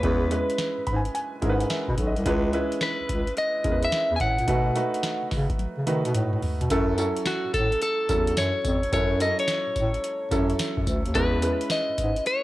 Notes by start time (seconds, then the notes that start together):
Already playing: B4
0.03 E2 G#3 C#4 E4 B4, kick, closed hi-hat
0.31 G#3 C#4 E4 B4, closed hi-hat
0.50 closed hi-hat
0.58 snare, closed hi-hat
0.78 G#2
0.87 G#2 B5, kick, closed hi-hat
0.96 G#5
1.05 closed hi-hat
1.15 G#5, closed hi-hat
1.42 G#2 G#3 C#4 E4 A#4, kick, closed hi-hat
1.49 B4 F#5
1.60 closed hi-hat
1.70 E5, snare, closed hi-hat
1.88 B2, kick
1.98 B1, kick, closed hi-hat
2.07 D#5
2.16 C2, closed hi-hat
2.25 C#2 G#3 C#4 E4 B4, kick, closed hi-hat
2.53 G#3 C#4 E4 B4, closed hi-hat
2.72 closed hi-hat
2.81 B4, snare, closed hi-hat
3.00 C#2
3.09 C#2, kick, closed hi-hat
3.27 closed hi-hat
3.37 D#5, closed hi-hat
3.64 E2 G#3 C#4 E4 A#4, kick, closed hi-hat
3.72 B4
3.83 E5, closed hi-hat
3.92 snare, closed hi-hat
4.11 E2
4.16 G#5, kick, closed hi-hat
4.20 A2 F#5
4.39 A#2, closed hi-hat
4.47 B2 A3 D#4 F#4 B4, kick, closed hi-hat
4.75 A3 D#4 F#4 B4, closed hi-hat
4.94 closed hi-hat
5.03 snare, closed hi-hat
5.22 C#3
5.31 C#3, kick, snare, open hi-hat
5.50 kick, closed hi-hat
5.59 closed hi-hat, high tom
5.78 C#3
5.86 D#3 A3 D#4 F#4 B4, closed hi-hat, mid tom
6.05 B2, closed hi-hat
6.15 A2, closed hi-hat, mid tom
6.33 A2, mid tom
6.42 floor tom, open hi-hat
6.61 B2, closed hi-hat, floor tom
6.70 F#2 F#3 C#4 E4 A4, kick, closed hi-hat, tambourine
6.97 F#3 C#4 E4 A4, closed hi-hat, tambourine
7.17 closed hi-hat
7.26 F#4, snare, closed hi-hat, tambourine
7.45 A2
7.54 A2 A4, kick, closed hi-hat, tambourine
7.72 closed hi-hat
7.81 A4, closed hi-hat
8.09 E2 F#3 C#4 E4 A4, kick, closed hi-hat, tambourine
8.27 closed hi-hat
8.37 F#2 C#5, snare, closed hi-hat, tambourine
8.65 F2, kick, closed hi-hat, tambourine
8.83 closed hi-hat
8.92 F#2 F#3 C#4 E4 A4 C#5, kick, closed hi-hat, tambourine
9.20 F#3 C#4 E4 A4 D#5, closed hi-hat, tambourine
9.39 C#5, closed hi-hat
9.48 snare, closed hi-hat, tambourine
9.67 A2
9.76 A2, kick, closed hi-hat, tambourine
9.94 closed hi-hat
10.04 closed hi-hat
10.31 F#2 F#3 C#4 E4 A4, kick, closed hi-hat, tambourine
10.50 closed hi-hat
10.59 snare, closed hi-hat, tambourine
10.77 F#2, kick
10.87 D2, kick, closed hi-hat, tambourine
11.06 D#2, closed hi-hat
11.14 E2 G#3 C#4 E4 B4, kick, closed hi-hat, tambourine
11.42 G#3 C#4 E4 B4, closed hi-hat, tambourine
11.61 closed hi-hat
11.70 D#5, snare, closed hi-hat, tambourine
11.89 G#2
11.98 G#2, kick, closed hi-hat, tambourine
12.16 closed hi-hat
12.26 C#5, closed hi-hat